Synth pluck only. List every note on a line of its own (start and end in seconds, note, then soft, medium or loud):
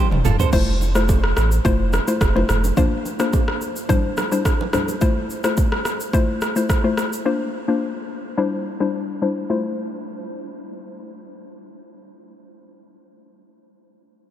0.53 0.74 A3 medium
0.53 0.74 E4 medium
0.53 0.74 F4 medium
0.53 0.74 C5 loud
0.95 1.16 A3 medium
0.95 1.16 E4 medium
0.95 1.16 F4 medium
0.95 1.16 C5 medium
1.65 1.86 A3 medium
1.65 1.86 E4 medium
1.65 1.86 F4 medium
1.65 1.86 C5 loud
2.08 2.28 A3 medium
2.08 2.28 E4 medium
2.08 2.28 F4 medium
2.08 2.29 C5 medium
2.35 2.56 A3 medium
2.35 2.56 E4 medium
2.35 2.56 F4 medium
2.35 2.56 C5 medium
2.77 2.98 A#3 medium
2.77 2.98 D4 medium
2.77 2.98 F4 medium
2.77 2.99 C5 loud
3.19 3.40 A#3 medium
3.19 3.40 D4 medium
3.19 3.41 F4 medium
3.19 3.41 C5 medium
3.89 4.10 G3 medium
3.89 4.10 D4 medium
3.89 4.11 E4 medium
3.89 4.11 C5 loud
4.32 4.52 G3 medium
4.32 4.53 D4 medium
4.32 4.53 E4 medium
4.32 4.53 C5 medium
4.73 4.94 G3 medium
4.73 4.95 D4 medium
4.73 4.95 E4 medium
4.73 4.95 C5 medium
5.01 5.23 A3 medium
5.01 5.23 E4 medium
5.01 5.23 F4 medium
5.01 5.23 C5 loud
5.44 5.65 A3 medium
5.44 5.65 E4 medium
5.44 5.65 F4 medium
5.44 5.65 C5 medium
6.13 6.35 A3 medium
6.13 6.35 E4 medium
6.13 6.35 F4 medium
6.13 6.35 C5 loud
6.56 6.77 A3 medium
6.56 6.77 E4 medium
6.56 6.77 F4 medium
6.56 6.77 C5 medium
6.84 7.05 A3 medium
6.84 7.05 E4 medium
6.84 7.05 F4 medium
6.84 7.05 C5 medium
7.25 7.47 A#3 medium
7.25 7.47 D4 medium
7.25 7.47 F4 medium
7.25 7.47 C5 loud
7.68 7.89 A#3 medium
7.68 7.89 D4 medium
7.68 7.89 F4 medium
7.68 7.89 C5 medium
8.37 8.59 G3 medium
8.37 8.59 D4 medium
8.37 8.59 E4 medium
8.37 8.59 C5 loud
8.80 9.01 G3 medium
8.80 9.01 D4 medium
8.80 9.01 E4 medium
8.80 9.01 C5 medium
9.22 9.43 G3 medium
9.22 9.43 D4 medium
9.22 9.43 E4 medium
9.22 9.43 C5 medium
9.50 12.60 A3 medium
9.50 12.60 E4 medium
9.50 12.61 F4 medium
9.50 12.61 C5 medium